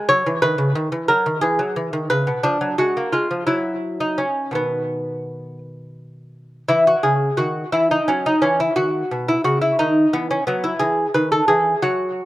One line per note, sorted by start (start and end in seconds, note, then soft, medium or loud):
0.09 0.26 F#3 medium
0.09 0.41 C#5 medium
0.26 0.42 E3 medium
0.42 0.58 D#3 medium
0.42 1.07 B4 medium
0.58 0.75 C#3 medium
0.75 0.92 D#3 medium
0.92 1.09 E3 medium
1.08 1.26 F#3 medium
1.08 1.41 A#4 medium
1.26 1.42 D#3 medium
1.41 1.59 E3 medium
1.41 2.07 G#4 medium
1.59 1.76 F#3 medium
1.76 1.93 E3 medium
1.93 2.10 D#3 medium
2.10 2.27 C#3 medium
2.10 2.43 B4 medium
2.27 2.44 B2 medium
2.43 2.61 F3 medium
2.43 2.77 D4 medium
2.61 2.78 F#3 medium
2.78 2.96 G#3 medium
2.78 3.12 F#4 medium
2.97 3.13 A#3 medium
3.12 3.30 G#3 medium
3.12 3.46 F4 medium
3.31 3.47 F3 soft
3.47 4.25 F#3 soft
3.47 3.99 E4 medium
4.00 4.19 D#4 medium
4.18 4.53 C#4 medium
4.51 6.63 B2 soft
4.51 6.64 D#3 soft
4.51 5.58 B3 medium
6.68 6.94 E3 medium
6.68 6.86 E4 medium
6.87 7.04 F#4 medium
7.03 7.29 C#3 medium
7.03 7.37 G#4 medium
7.37 7.63 D#3 soft
7.37 7.71 F#4 medium
7.72 7.99 E3 soft
7.72 7.90 E4 medium
7.91 8.08 D#4 medium
8.08 8.33 F#3 medium
8.08 8.25 C#4 medium
8.26 8.43 D#4 medium
8.42 8.67 E3 soft
8.42 8.59 C#4 medium
8.60 8.75 E4 medium
8.76 9.02 D#3 medium
8.76 9.26 F#4 medium
9.11 9.36 B2 medium
9.28 9.44 E4 medium
9.44 9.70 C#3 medium
9.44 9.61 F#4 medium
9.61 9.79 E4 medium
9.79 10.05 D#3 medium
9.79 10.12 D#4 medium
10.13 10.38 E3 medium
10.13 10.30 B3 medium
10.31 10.46 C#4 medium
10.47 10.72 F#3 medium
10.47 10.64 B3 medium
10.64 10.81 E4 medium
10.79 11.05 E3 medium
10.79 11.13 G#4 medium
11.14 11.40 D#3 medium
11.14 11.31 B4 medium
11.32 11.47 A4 medium
11.48 11.74 E3 soft
11.48 11.81 G#4 medium
11.82 12.20 F#3 medium
11.82 12.25 F#4 medium